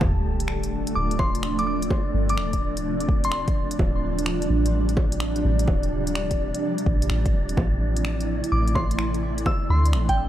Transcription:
0.01 D1 C3 F3 A3 D4 D5, kick, sub drop, low bongo
0.40 closed hi-hat
0.48 finger snap
0.64 closed hi-hat
0.87 closed hi-hat
0.95 D1 D6
1.11 closed hi-hat
1.19 C6, kick, low bongo
1.35 closed hi-hat
1.43 finger snap
1.59 D6, closed hi-hat
1.67 D6
1.82 closed hi-hat
1.90 kick, low bongo
2.14 G1
2.29 D6, closed hi-hat
2.38 D1, finger snap
2.53 kick, closed hi-hat
2.77 closed hi-hat
3.00 closed hi-hat
3.09 kick
3.24 C6, closed hi-hat
3.32 C6, finger snap
3.48 kick, closed hi-hat
3.71 closed hi-hat
3.79 D1 G3, kick, low bongo
4.19 closed hi-hat
4.26 finger snap
4.42 closed hi-hat
4.50 A1
4.66 closed hi-hat
4.89 closed hi-hat
4.97 kick, low bongo
5.12 closed hi-hat
5.20 finger snap
5.36 closed hi-hat
5.45 A1
5.59 closed hi-hat
5.68 D1, kick, low bongo
5.83 closed hi-hat
6.07 closed hi-hat
6.15 finger snap
6.31 kick, closed hi-hat
6.54 closed hi-hat
6.78 closed hi-hat
6.86 A1, kick
7.02 closed hi-hat
7.10 A1, finger snap
7.26 kick, closed hi-hat
7.34 D1
7.49 closed hi-hat
7.57 A1 E3 A3 E4, kick, low bongo
7.97 closed hi-hat
8.05 finger snap
8.21 closed hi-hat
8.44 closed hi-hat
8.52 A1 D6
8.68 closed hi-hat
8.75 C6, kick, low bongo
8.91 closed hi-hat
8.99 finger snap
9.14 closed hi-hat
9.38 closed hi-hat
9.46 D4 E6, kick, low bongo
9.70 D2 C6
9.86 closed hi-hat
9.93 A1, finger snap
10.09 G5, kick, closed hi-hat

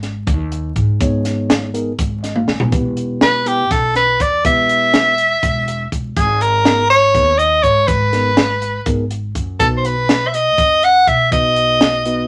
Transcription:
Already playing: G#1
0.03 snare, closed hi-hat
0.27 D#2, kick, closed hi-hat
0.52 closed hi-hat
0.76 G#2, kick, closed hi-hat
1.00 G#1 B3 D#4 G#4 C#5, kick, closed hi-hat
1.25 snare, closed hi-hat
1.50 snare, closed hi-hat
1.74 B3 D#4 G#4 A#4, closed hi-hat
1.99 G#1, kick, closed hi-hat
2.23 D#5, snare, closed hi-hat
2.35 F5, high tom
2.47 G#1 G#5, snare
2.60 floor tom
2.72 E1 B3 E4 G4 B4, kick, closed hi-hat
2.97 closed hi-hat
3.21 B4, snare, closed hi-hat
3.46 B3 E4 G4 B4, closed hi-hat
3.70 B1 A4, kick, snare, closed hi-hat
3.95 B4, snare, closed hi-hat
4.20 E2 D5, kick, closed hi-hat
4.44 E1 B3 E4 G4 B4 E5, kick, closed hi-hat
4.69 closed hi-hat
4.94 snare, closed hi-hat
5.18 closed hi-hat
5.43 E1, kick, closed hi-hat
5.68 closed hi-hat
5.92 E1, kick, closed hi-hat
6.16 G#1 G#4, kick, closed hi-hat
6.41 A#4, closed hi-hat
6.65 B3 D#4 G#4 A#4, snare, closed hi-hat
6.90 C#5, closed hi-hat
7.14 D#2 B3 D#4 G#4 B4, kick, closed hi-hat
7.38 D#5, closed hi-hat
7.63 G#2 C#5, kick, closed hi-hat
7.87 G#1 B4, kick, closed hi-hat
8.12 B3 D#4 G#4 A#4, snare, closed hi-hat
8.37 snare, closed hi-hat
8.62 closed hi-hat
8.86 G#1 B3 D#4 G#4 A#4, kick, closed hi-hat
9.11 closed hi-hat
9.35 F#2, kick, closed hi-hat
9.59 B1 B3 D#4 F#4 A4 B4, kick, closed hi-hat
9.77 C5
9.85 B4, closed hi-hat
10.09 snare, closed hi-hat
10.27 E5
10.34 D#5, closed hi-hat
10.58 F#2, kick, closed hi-hat
10.83 F#5, closed hi-hat
11.07 B2 E5, kick, closed hi-hat
11.31 B1 B3 D#4 F#4 B4 D#5, kick, closed hi-hat
11.56 closed hi-hat
11.81 snare, closed hi-hat
12.05 B3 D#4 F#4 B4, closed hi-hat

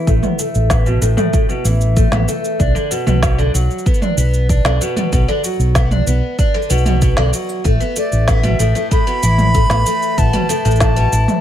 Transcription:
0.07 A1 A3, kick, shaker
0.23 B3, mid tom, shaker
0.39 A3, shaker
0.55 A1, shaker
0.70 B3, kick, snare, shaker
0.86 B2, shaker
1.02 A1 A2, shaker
1.17 A2, mid tom, shaker
1.33 A2, kick, shaker
1.49 B2, shaker
1.65 A1 E3, shaker
1.81 shaker
1.96 A3, kick, shaker
2.12 A1 B3, snare, mid tom, shaker
2.28 A3, shaker
2.44 shaker
2.59 B1 D4, kick, shaker
2.75 D3, shaker
2.91 B2, shaker
3.07 B1 B2, mid tom, shaker
3.22 B2, kick, snare, shaker
3.38 D3, shaker
3.54 B1 F#3, shaker
3.71 shaker
3.78 shaker
3.86 B3, kick, shaker
3.94 shaker
4.02 D4, mid tom, shaker
4.17 B1 B3, shaker
4.34 shaker
4.49 D4, kick, shaker
4.65 B1 D3, snare, shaker
4.81 B2, shaker
4.96 B2, mid tom, shaker
5.12 B1 B2, kick, shaker
5.28 D3, shaker
5.44 F#3, shaker
5.59 B1, shaker
5.75 B3, kick, snare, shaker
5.91 D4, mid tom, shaker
6.07 B1 B3, shaker
6.39 D4, kick, shaker
6.54 D3, shaker
6.62 shaker
6.70 B1 B2, shaker
6.78 shaker
6.86 B2, mid tom, shaker
7.02 B2, kick, shaker
7.17 B1 D3, snare
7.33 F#3, shaker
7.49 shaker
7.64 A1 A3, kick, shaker
7.80 B3, shaker
7.96 A3 D5, shaker
8.12 A1, shaker
8.28 B3 E5, kick, snare, shaker
8.43 B2, mid tom, shaker
8.59 A1 A2, shaker
8.75 A2, shaker
8.91 A2 B5, kick, shaker
9.07 B2, shaker
9.23 A1 E3, shaker
9.38 mid tom, shaker
9.54 A3, kick, shaker
9.70 A1 B3, snare, shaker
9.86 A3, shaker
10.02 shaker
10.18 A1 B3 A5, kick, shaker
10.33 B2, mid tom, shaker
10.49 A2, shaker
10.65 A1 A2, shaker
10.71 shaker
10.76 shaker
10.80 A2 A5, kick, snare, shaker
10.96 B2, shaker
11.12 A1 E3, shaker
11.28 mid tom, shaker

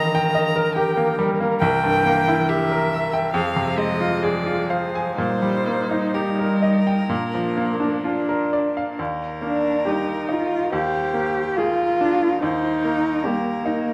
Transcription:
Already playing: G2 D#3 G3 A#3 D#4 G4 A#4 D#5 G5 A#5
0.15 G5
0.35 D#5
0.56 A#4
0.74 G4 G5
0.97 A#3
1.19 G3
1.40 A#3
1.60 C2 E3 G5
1.84 G2
2.05 A#3
2.28 E4
2.49 G4 E5
2.72 A#4
2.93 E5
3.13 G5
3.34 F2 F3 G#4 F5
3.56 C3
3.77 G#3 D#5
4.00 F4
4.23 G#4 D5
4.46 F4
4.70 C5 F5
4.95 G#5
5.16 A#2 G3 D#4 C5
5.42 G3
5.67 A#3
5.91 D#4
6.14 G3 G4 A#4
6.39 A#4
6.62 D#5
6.87 G5
7.09 A#2 A#3 D4
7.34 F3
7.57 A#3
7.80 D4
8.04 D4 F4
8.29 A#4
8.53 D5
8.77 F5
8.99 D#2 A#4
9.41 A#3 D4
9.85 G3 D#4 G4
10.29 D#4 F4
10.71 D#2 G4 C5
11.14 A#3
11.56 G#3 F4 G#4 A#4
12.01 D4
12.40 D#2 D#4 C5
12.83 A#3 A#4
13.24 G3 A#3 G4
13.65 D#4

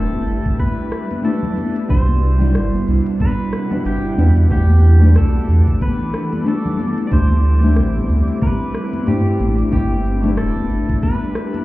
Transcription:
Already playing: D1 G3 A3 D4 E4 G4 A4 B4
0.13 high conga, cabasa
0.27 G1, cabasa
0.46 kick, closed hi-hat, cabasa
0.59 B4, kick, closed hi-hat, high conga, cabasa
0.78 cabasa
0.92 cross-stick, cabasa
1.11 closed hi-hat, high conga, cabasa
1.23 A3 D4 E4 G4 A4 B4, closed hi-hat, cabasa
1.43 low conga, cabasa
1.57 high conga, cabasa
1.76 closed hi-hat, cabasa
1.88 C2 B2 C3 G3 D4 E4 F#4 C5 F#5, kick, closed hi-hat, cabasa
2.09 high conga, cabasa
2.22 cabasa
2.38 G3 D4 E4, closed hi-hat, low conga, cabasa
2.43 F#4 D5
2.55 G1, cross-stick, closed hi-hat, cabasa
2.74 high conga, cabasa
2.87 C2, cabasa
3.06 closed hi-hat, cabasa
3.20 B4, kick, closed hi-hat, high conga, cabasa
3.39 cabasa
3.53 cross-stick, cabasa
3.71 G3 D4 E4 F#4 B4, closed hi-hat, high conga, cabasa
3.85 G1 G4, closed hi-hat, cabasa
4.04 cabasa
4.17 E2 G3 D4 E4 F#4 B4, high conga, cabasa
4.37 E2, closed hi-hat, cabasa
4.49 E2 E3 G3 A3 D4 G4 A4 B4 F#5 D6, kick, closed hi-hat, cabasa
4.70 high conga, cabasa
4.83 cabasa
4.99 A3 D4 F#4, closed hi-hat, cabasa
5.03 G4 B4, low conga
5.16 B1 A4, cross-stick, closed hi-hat, cabasa
5.35 high conga, cabasa
5.48 E2, cabasa
5.67 kick, closed hi-hat, cabasa
5.81 B4, kick, closed hi-hat, high conga, cabasa
6.00 cabasa
6.14 cross-stick, cabasa
6.33 closed hi-hat, high conga, cabasa
6.45 A3 D4 F#4 G4 A4 B4, closed hi-hat, cabasa
6.65 low conga, cabasa
6.79 high conga, cabasa
6.98 closed hi-hat, cabasa
7.07 A3 D4 D5
7.12 D2 D3 C4 E4 G4 C5, kick, closed hi-hat, cabasa
7.30 high conga, cabasa
7.44 cabasa
7.60 A3 D4 E4, closed hi-hat, low conga, cabasa
7.65 C4 G4
7.76 A1, cross-stick, closed hi-hat, cabasa
7.95 high conga, cabasa
8.09 D2, cabasa
8.28 closed hi-hat, cabasa
8.42 B4, kick, closed hi-hat, high conga, cabasa
8.61 cabasa
8.75 cross-stick, cabasa
8.93 closed hi-hat, high conga, cabasa
9.06 G2 A3 D4 E4 G4 C5, closed hi-hat, cabasa
9.26 cabasa
9.40 A1, high conga, cabasa
9.59 closed hi-hat, cabasa
9.71 G1 G3 A3 D4 E4 G4 B4, kick, closed hi-hat, cabasa
9.91 high conga, cabasa
10.05 cabasa
10.21 A3 D4 E4, closed hi-hat, low conga, cabasa
10.26 G4 B4
10.37 D1 A4, cross-stick, closed hi-hat, cabasa
10.56 high conga, cabasa
10.70 G1, cabasa
10.89 kick, closed hi-hat, cabasa
11.03 B4, kick, closed hi-hat, high conga, cabasa
11.22 cabasa
11.35 cross-stick, cabasa
11.54 closed hi-hat, high conga, cabasa

